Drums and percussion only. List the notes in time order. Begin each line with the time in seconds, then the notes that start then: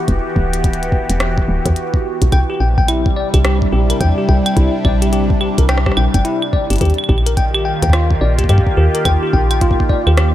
0.08 kick, closed hi-hat
0.36 kick
0.53 closed hi-hat
0.64 kick, closed hi-hat
0.73 closed hi-hat
0.83 closed hi-hat
0.92 kick
1.10 closed hi-hat
1.20 cross-stick, closed hi-hat
1.38 kick
1.66 kick, closed hi-hat
1.76 closed hi-hat
1.94 kick
2.22 kick, closed hi-hat
2.32 kick, closed hi-hat, claves
2.78 kick
2.88 closed hi-hat, claves
3.06 kick
3.34 kick, closed hi-hat, claves
3.45 cross-stick, closed hi-hat
3.62 kick
3.90 closed hi-hat, claves
4.01 kick, closed hi-hat
4.29 kick
4.46 closed hi-hat, claves
4.57 kick, closed hi-hat
4.85 kick, claves
5.02 closed hi-hat
5.13 closed hi-hat
5.30 kick
5.41 claves
5.58 kick, closed hi-hat
5.69 cross-stick, closed hi-hat
5.78 cross-stick
5.86 kick, cross-stick
5.92 cross-stick
5.97 claves
6.14 kick, closed hi-hat
6.25 closed hi-hat
6.42 claves
6.53 kick
6.70 closed hi-hat
6.73 closed hi-hat
6.76 closed hi-hat
6.78 closed hi-hat
6.81 kick, closed hi-hat
6.85 closed hi-hat
6.90 closed hi-hat
6.94 closed hi-hat
6.98 claves
7.04 claves
7.09 kick, claves
7.18 claves
7.26 closed hi-hat
7.37 kick, closed hi-hat
7.54 claves
7.83 kick, closed hi-hat
7.90 kick, cross-stick, closed hi-hat, claves
8.11 kick
8.39 kick, closed hi-hat
8.44 kick
8.49 kick, closed hi-hat, claves
8.58 kick
8.67 kick
8.95 closed hi-hat
9.05 kick, closed hi-hat, claves
9.33 kick
9.51 closed hi-hat, claves
9.61 kick, closed hi-hat
9.71 kick
9.80 kick
9.89 kick
10.07 claves
10.17 cross-stick, closed hi-hat